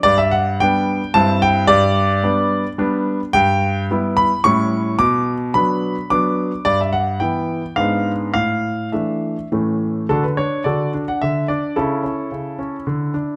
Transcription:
<<
  \new Staff \with { instrumentName = "Grand piano" } { \time 3/4 \key g \major \tempo 4 = 109 d''16 e''16 fis''8 g''4 a''8 g''8 | d''2. | \key d \major g''4. b''8 cis'''4 | d'''4 b''4 d'''4 |
d''16 e''16 fis''8 g''4 eis''4 | f''4 e''4 r4 | <d' fis' a'>16 b'16 cis''8 <fis' a' d''>8. fis''16 e''8 d''8 | <cis' e' a'>2. | }
  \new Staff \with { instrumentName = "Grand piano" } { \time 3/4 \key g \major g,4 <g b d'>4 <g, g c' e'>4 | g,4 <g b d'>4 <g b d'>4 | \key d \major g,4 <g b e'>4 <a, g cis' e'>4 | b,4 <fis b d'>4 <fis b d'>4 |
g,4 <e b e'>4 <gis, gis b d'>4 | a,4 <e a d'>4 <a, e a cis'>4 | d8 d'8 d8 d'8 d8 d'8 | cis8 cis'8 cis8 cis'8 d8 d'8 | }
>>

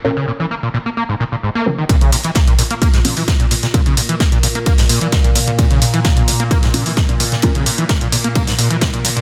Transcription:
<<
  \new Staff \with { instrumentName = "Synth stab" } { \time 4/4 \key bes \minor \tempo 4 = 130 <des' f' bes'>8 r2. <des' f' bes'>16 r16 | <des' f' bes'>8 r2 <des' f' bes'>16 r4 r16 | <des' f' bes'>8 r2. r8 | <des' f' bes'>8 r2 <des' f' bes'>16 r4 r16 |
<des' f' bes'>8 r2. r8 | }
  \new Staff \with { instrumentName = "Acid bass" } { \clef bass \time 4/4 \key bes \minor bes,16 des16 bes,16 e16 bes16 bes,16 bes,16 bes16 bes16 aes,16 bes,16 bes,16 aes,16 bes16 bes,16 ees16 | bes,16 des16 bes,16 e16 bes16 bes,16 bes,16 bes16 bes16 aes,16 bes,16 e16 aes,16 bes,16 bes,16 bes,16 | bes,16 des16 bes,16 e16 bes16 bes,16 bes,16 bes16 bes16 aes,16 bes,16 e16 aes,16 bes,16 bes,16 bes,16 | bes,16 des16 bes,16 e16 bes16 bes,16 bes,16 bes16 bes16 aes,16 bes,16 e16 aes,16 bes,16 bes,16 bes,16 |
bes,16 des16 bes,16 e16 bes16 bes,16 bes,16 bes16 bes16 aes,16 bes,16 e16 aes,16 bes,16 bes,16 bes,16 | }
  \new Staff \with { instrumentName = "Synth drone" } { \clef bass \time 4/4 \key bes \minor r1 | bes,1~ | bes,1~ | bes,1~ |
bes,1 | }
  \new DrumStaff \with { instrumentName = "Drums" } \drummode { \time 4/4 r4 r4 r4 r4 | <hh bd cymr toml>16 hh16 <hho cymr toml>16 <hh cymr>16 <hh bd cymr sn toml>16 <hh cymr>16 <hho cymr toml>16 hh16 <hh bd cymr toml>16 <hh sn>16 <hho cymr toml>16 <hho cymr>16 <hh bd cymr sn toml>16 hh16 <hho cymr toml>16 <hh sn>16 | <hh bd cymr toml>16 hh16 <hho cymr toml>16 hh16 <hh bd cymr sn toml>16 hh16 <hho cymr toml>16 hh16 <hh bd cymr toml>16 <hho sn>16 <hho cymr toml>16 hh16 <hh bd cymr sn toml>16 hh16 <hho cymr toml>16 hh16 | <hh bd cymr toml>16 hh16 <hho cymr toml>16 <hh cymr>16 <hh bd cymr sn toml>16 <hh cymr>16 <hho cymr toml>16 hh16 <hh bd cymr toml>16 <hh sn>16 <hho cymr toml>16 <hho cymr>16 <hh bd cymr sn toml>16 hh16 <hho cymr toml>16 <hh sn>16 |
<hh bd cymr toml>16 hh16 <hho cymr toml>16 hh16 <hh bd cymr sn toml>16 hh16 <hho cymr toml>16 hh16 <hh bd cymr toml>16 <hho sn>16 <hho cymr toml>16 hh16 <hh bd cymr sn toml>16 hh16 <hho cymr toml>16 hh16 | }
>>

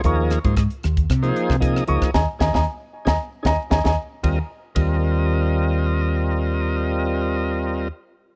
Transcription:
<<
  \new Staff \with { instrumentName = "Grand piano" } { \time 4/4 \key ees \mixolydian \tempo 4 = 115 des'''4 r2 r8 des'''8 | <ees'' aes'' bes''>16 r16 <ees'' aes'' bes''>16 <ees'' aes'' bes''>16 r8. <ees'' aes'' bes''>16 r8 <ees'' aes'' bes''>16 r16 <ees'' aes'' bes''>16 <ees'' aes'' bes''>16 r8 | r1 | r1 | }
  \new Staff \with { instrumentName = "Tonewheel organ" } { \time 4/4 \key ees \mixolydian <f bes ees' aes' bes'>8. <f bes ees' aes' c''>16 <aes' ees''>16 r4 <f bes ees' aes' c''>8. <f bes ees' aes' ees''>8 <f bes ees' aes' ees''>8 | <des' ees' aes'>16 r16 <des' ees' aes'>16 <des' ees' aes'>16 r8. <des' ees' aes'>16 r8 <des' ees' aes'>16 r16 <des' ees' aes'>16 <des' ees' aes'>16 r8 | <g c' f' bes' ees''>16 r8. <g c' f' bes' ees''>2.~ | <g c' f' bes' ees''>1 | }
  \new Staff \with { instrumentName = "Fretless electric bass" } { \clef bass \time 4/4 \key ees \mixolydian ees,8. aes,8 r16 ees,8 c8 r16 c8. des,16 r16 | ees,16 r16 ees,16 ees,16 r8. ees,16 r8 ees,16 r16 ees,16 ees,16 r8 | ees,16 r8. ees,2.~ | ees,1 | }
  \new DrumStaff \with { instrumentName = "Drums" } \drummode { \time 4/4 <hh bd>8 <hh ss>16 <hh bd>16 <hh bd ss>16 hh16 <hh ss>16 <hh bd>16 <hh bd ss>16 hh16 hh16 <bd ss>16 <hh bd>16 ss16 hh16 <bd ss>16 | <bd sn>8 <bd sn>16 <bd sn>16 r8. <bd sn>16 r8 <bd sn>8 <bd sn>16 <bd sn>8. | <bd cymr>4 <bd cymr>4 r4 r4 | r4 r4 r4 r4 | }
>>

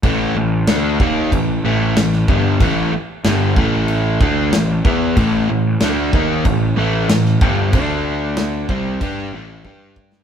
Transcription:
<<
  \new Staff \with { instrumentName = "Overdriven electric guitar" } { \clef bass \time 4/4 \key a \minor \tempo 4 = 94 <a, e a>8 <a, e>8 <d a d'>8 <dis bes dis'>8 <a, e>8 <a, e a>8 <a, e>8 <g, d g>8 | <a, e a>8 r8 <g, d g>8 <a, e a>4 <d a d'>8 <a, e>8 <e b e'>8 | <a, e a>8 <a, e>8 <d a d'>8 <dis bes dis'>8 <a, e>8 <a, e a>8 <a, e>8 <g, d g>8 | <d a d'>4. <c g c'>8 <g d' g'>8 <a, e a>8 <g d' g'>4 | }
  \new Staff \with { instrumentName = "Picked electric bass" } { \clef bass \time 4/4 \key a \minor a,,8 a,,8 d,8 dis,8 a,,8 a,,8 a,,8 g,,8 | a,,8 r8 g,,8 a,,4 d,8 a,,8 e,8 | a,,8 a,,8 d,8 dis,8 a,,8 a,,8 a,,8 g,,8 | d,4. c,8 g,8 a,,8 g,4 | }
  \new DrumStaff \with { instrumentName = "Drums" } \drummode { \time 4/4 <cymc bd>4 <cymc sn>8 bd8 <cymc bd>4 <cymc sn>16 sn16 bd8 | <cymc bd>4 <cymc sn>8 bd8 cymc8 bd8 <cymc sn>8 bd8 | <cymc bd>4 <cymc sn>8 bd8 <cymc bd>4 <cymc sn>16 sn16 bd8 | <cymc bd>4 <cymc sn>8 bd8 <cymc bd>4 bd8 bd16 sn16 | }
>>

